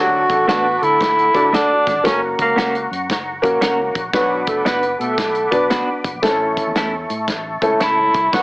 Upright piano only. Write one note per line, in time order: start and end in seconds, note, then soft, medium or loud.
0.00 0.78 A3 medium
0.00 0.79 D4 medium
0.00 0.79 F#4 medium
0.00 0.82 A4 medium
1.34 1.90 A3 medium
1.34 1.90 D4 medium
1.34 1.90 F#4 medium
1.34 1.90 A4 medium
2.03 2.88 A#3 medium
2.03 2.88 C#4 medium
2.03 2.88 F#4 medium
2.03 2.13 A4 medium
2.11 2.92 A#4 medium
3.42 3.99 A#3 medium
3.42 3.99 C#4 medium
3.42 3.99 F#4 medium
3.42 3.99 A#4 medium
4.13 4.98 B3 medium
4.13 4.98 D4 medium
4.13 4.98 F#4 medium
4.13 4.98 B4 medium
5.51 6.08 B3 medium
5.51 6.08 D4 medium
5.51 6.08 F#4 medium
5.51 6.08 B4 medium
6.22 7.07 A3 medium
6.22 6.31 C4 medium
6.22 7.07 E4 medium
6.22 7.07 A4 medium
6.29 7.10 C#4 medium
7.62 8.18 A3 medium
7.62 8.18 C#4 medium
7.62 8.18 E4 medium
7.62 8.19 A4 medium
8.33 8.43 B3 medium
8.33 8.43 D4 medium
8.33 8.43 F#4 medium
8.33 8.41 A#4 medium